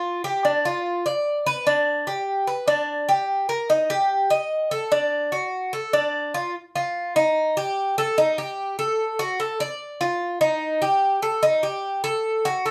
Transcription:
0.00 0.23 F4 medium
0.24 0.44 G4 medium
0.45 0.64 D4 medium
0.65 1.04 F4 medium
1.06 1.45 D5 medium
1.46 1.66 B4 medium
1.67 2.06 D4 medium
2.07 2.46 G4 medium
2.47 2.67 B4 medium
2.68 3.07 D4 medium
3.09 3.48 G4 medium
3.49 3.69 A#4 medium
3.70 3.89 D#4 medium
3.90 4.29 G4 medium
4.30 4.70 D#5 medium
4.71 4.91 A4 medium
4.92 5.31 D4 medium
5.32 5.72 F#4 medium
5.73 5.93 A4 medium
5.93 6.33 D4 medium
6.34 6.54 F4 medium
6.75 7.15 F4 medium
7.16 7.55 D#4 medium
7.57 7.96 G4 medium
7.98 8.17 A4 medium
8.18 8.37 D#4 medium
8.38 8.77 G4 medium
8.79 9.18 A4 medium
9.19 9.39 F#4 medium
9.40 9.59 A4 medium
9.60 10.00 D5 medium
10.01 10.40 F4 medium
10.41 10.81 D#4 medium
10.82 11.21 G4 medium
11.22 11.42 A4 medium
11.43 11.63 D#4 medium
11.63 12.03 G4 medium
12.04 12.43 A4 medium
12.45 12.65 F#4 medium
12.66 12.71 A4 medium

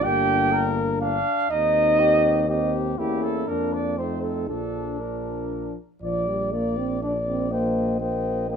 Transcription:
0.04 1.20 G1 medium
0.04 1.23 A#3 medium
0.04 1.20 D4 medium
0.04 0.54 G4 medium
0.04 0.74 G5 loud
0.52 1.00 A#4 medium
1.01 1.49 D4 medium
1.01 1.52 F5 medium
1.50 2.94 D#2 medium
1.50 2.45 C4 soft
1.50 2.44 D#4 medium
1.50 2.01 D#4 medium
1.50 2.48 D#5 loud
2.00 2.48 G4 medium
2.49 2.97 C4 medium
2.49 2.97 D#4 soft
2.49 3.00 G4 medium
2.49 2.73 D#5 medium
2.98 3.44 E2 soft
2.98 3.45 A#3 soft
2.98 3.50 C#4 soft
2.98 3.50 E4 medium
2.98 3.25 G4 medium
3.23 3.49 A4 medium
3.48 4.50 F2 soft
3.48 4.00 A#3 soft
3.48 3.98 D4 soft
3.48 3.99 D4 soft
3.48 3.75 A#4 medium
3.73 3.98 D5 medium
3.98 4.50 A3 soft
3.98 4.49 C4 soft
3.98 4.50 D#4 soft
3.98 4.22 C5 medium
4.22 4.48 A4 soft
4.49 5.77 A#1 soft
4.49 5.00 F3 soft
4.49 5.00 D4 soft
4.49 5.74 D4 soft
4.49 5.02 A4 soft
5.00 5.75 F3 soft
5.00 5.75 D4 soft
5.00 5.77 A#4 soft
6.02 8.56 A#1 soft
6.02 6.29 F3 medium
6.02 6.49 D5 soft
6.27 6.54 G3 medium
6.53 6.79 A#3 medium
6.53 7.02 D5 soft
6.77 7.01 C4 medium
7.02 7.13 D4 medium
7.02 7.54 D5 soft
7.02 7.53 D5 soft
7.26 7.51 C4 medium
7.51 8.00 A#3 medium
7.51 8.00 C5 soft
7.51 8.01 D#5 soft
7.51 8.00 G5 soft
8.00 8.49 A#3 medium
8.00 8.49 C5 soft
8.00 8.50 D#5 soft
8.00 8.49 G5 soft
8.50 8.56 A#3 medium
8.50 8.56 C5 soft
8.50 8.56 D#5 soft
8.50 8.56 G5 soft

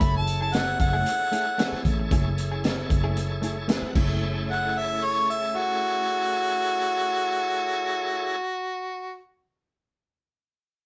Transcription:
0.00 0.76 F#1 loud
0.00 0.17 A3 medium
0.00 0.17 C#4 medium
0.00 3.91 E4 medium
0.00 0.18 E4 medium
0.00 3.91 G#4 medium
0.00 0.18 G#4 medium
0.00 3.91 A4 medium
0.00 3.42 C#5 medium
0.00 0.13 B5 loud
0.00 kick loud
0.00 closed hi-hat medium
0.17 0.41 A5 medium
0.27 muted clean electric guitar stroke soft
0.27 closed hi-hat medium
0.41 0.52 C#4 soft
0.41 0.52 E4 medium
0.41 0.53 G#4 medium
0.41 0.55 A5 medium
0.53 0.79 F#5 medium
0.53 muted clean electric guitar stroke soft
0.53 snare loud
0.53 closed hi-hat medium
0.67 muted clean electric guitar stroke soft
0.79 1.04 F#1 medium
0.79 1.82 F#5 loud
0.79 muted clean electric guitar stroke soft
0.79 kick medium
0.79 closed hi-hat medium
0.93 1.09 A3 medium
0.93 1.09 C#4 medium
0.93 1.09 E4 medium
0.93 1.08 G#4 medium
1.06 closed hi-hat medium
1.21 muted clean electric guitar stroke soft
1.32 1.46 A3 medium
1.32 1.47 C#4 medium
1.32 1.46 E4 medium
1.32 1.45 G#4 medium
1.32 closed hi-hat medium
1.46 muted clean electric guitar stroke medium
1.58 1.75 A3 medium
1.58 1.76 C#4 loud
1.58 1.76 E4 medium
1.58 1.76 G#4 loud
1.58 snare loud
1.58 closed hi-hat medium
1.72 muted fingered electric bass stroke soft
1.72 snare soft
1.85 2.09 A1 medium
1.85 muted clean electric guitar stroke soft
1.85 kick medium
1.85 closed hi-hat medium
1.99 muted clean electric guitar stroke medium
2.11 2.86 F#1 loud
2.11 2.28 A3 medium
2.11 2.28 C#4 medium
2.11 2.29 E4 loud
2.11 2.29 G#4 loud
2.11 kick loud
2.11 closed hi-hat medium
2.38 muted clean electric guitar stroke soft
2.38 closed hi-hat medium
2.52 2.63 C#4 soft
2.52 2.63 E4 medium
2.52 2.64 G#4 medium
2.64 muted clean electric guitar stroke soft
2.64 snare loud
2.64 closed hi-hat medium
2.78 muted clean electric guitar stroke soft
2.89 3.79 F#1 medium
2.89 muted clean electric guitar stroke soft
2.89 kick medium
2.89 closed hi-hat medium
3.04 3.20 A3 medium
3.04 3.19 C#4 medium
3.04 3.19 E4 medium
3.04 3.19 G#4 medium
3.17 closed hi-hat medium
3.30 muted clean electric guitar stroke soft
3.42 3.56 A3 medium
3.42 3.56 C#4 medium
3.42 3.56 E4 medium
3.42 3.55 G#4 medium
3.42 3.68 C#5 medium
3.42 closed hi-hat medium
3.57 muted clean electric guitar stroke soft
3.68 3.85 A3 medium
3.68 3.86 C#4 loud
3.68 3.86 E4 loud
3.68 3.86 G#4 medium
3.68 3.94 F#5 medium
3.68 snare loud
3.68 closed hi-hat medium
3.82 muted fingered electric bass stroke soft
3.93 8.35 F#1 medium
3.93 8.37 A3 medium
3.93 8.40 C#4 medium
3.93 8.36 E4 medium
3.93 8.36 G#4 medium
3.93 8.36 A4 medium
3.93 8.36 C#5 medium
3.93 kick loud
3.93 crash medium
3.97 8.42 E4 medium
4.51 4.79 F#5 medium
4.78 5.06 E5 medium
5.04 5.28 C#5 loud
5.30 5.58 E5 medium
5.56 9.20 F#4 loud

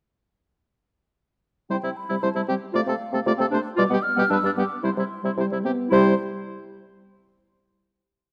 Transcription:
1.70 1.76 C3 soft
1.70 1.76 G3 soft
1.70 1.76 E4 soft
1.70 1.76 C5 soft
1.70 1.98 G5 medium
1.83 1.89 C3 soft
1.83 1.89 G3 soft
1.83 1.90 E4 soft
1.97 2.24 B5 medium
2.09 2.16 C3 soft
2.09 2.16 G3 soft
2.09 2.15 E4 soft
2.22 2.28 C3 medium
2.22 2.29 G3 soft
2.22 2.28 E4 medium
2.22 2.29 C5 soft
2.22 2.47 A5 medium
2.35 2.41 C3 soft
2.35 2.42 G3 soft
2.35 2.41 E4 soft
2.48 2.54 C3 soft
2.48 2.55 G3 soft
2.48 2.54 C4 soft
2.48 2.54 G4 soft
2.48 2.54 G5 medium
2.73 2.80 C3 medium
2.73 2.81 A3 medium
2.73 2.79 F4 medium
2.73 2.81 D5 medium
2.73 3.50 F5 medium
2.86 2.93 C3 soft
2.86 2.94 A3 soft
2.86 2.93 C4 soft
2.86 2.94 A4 soft
3.12 3.19 C3 soft
3.12 3.20 A3 soft
3.12 3.18 C4 soft
3.12 3.20 A4 soft
3.26 3.32 C3 medium
3.26 3.32 A3 medium
3.26 3.32 F4 medium
3.26 3.33 D5 medium
3.38 3.45 C3 medium
3.38 3.45 A3 soft
3.38 3.44 C4 medium
3.38 3.46 A4 medium
3.50 3.58 C3 soft
3.50 3.59 A3 medium
3.50 3.57 D4 medium
3.50 3.59 C5 medium
3.76 3.84 B2 medium
3.76 3.84 G3 medium
3.76 3.83 F4 medium
3.76 3.84 D5 medium
3.76 4.04 D6 medium
3.90 3.97 B2 medium
3.90 3.97 G3 medium
3.90 3.96 B3 soft
3.90 3.99 G4 soft
4.03 4.32 F6 medium
4.16 4.24 B2 medium
4.16 4.23 G3 medium
4.16 4.22 B3 medium
4.16 4.25 G4 medium
4.30 4.36 G2 medium
4.30 4.36 G3 medium
4.30 4.36 D4 medium
4.30 4.38 B4 medium
4.30 4.55 E6 medium
4.43 4.50 G2 soft
4.43 4.49 G3 medium
4.43 4.51 D4 medium
4.56 4.63 G2 soft
4.56 4.63 G3 soft
4.56 4.63 B3 soft
4.56 4.64 G4 soft
4.56 4.85 D6 medium
4.83 4.89 C3 medium
4.83 4.90 G3 medium
4.83 4.89 E4 soft
4.83 4.90 C5 medium
4.83 5.38 C6 medium
4.97 5.03 C3 soft
4.97 5.03 G3 soft
4.97 5.04 G3 soft
4.97 5.05 E4 soft
5.23 5.30 C3 soft
5.23 5.29 G3 soft
5.23 5.31 G3 soft
5.23 5.31 E4 soft
5.37 5.44 C3 medium
5.37 5.66 G3 medium
5.37 5.43 E4 soft
5.37 5.45 C5 soft
5.50 5.58 C3 soft
5.50 5.56 G3 soft
5.50 5.58 E4 soft
5.64 5.71 C3 soft
5.64 5.91 B3 medium
5.64 5.70 C4 soft
5.64 5.71 G4 soft
5.89 6.14 C3 medium
5.89 6.14 G3 medium
5.89 6.13 E4 medium
5.89 6.15 C5 medium
5.89 6.21 C6 medium

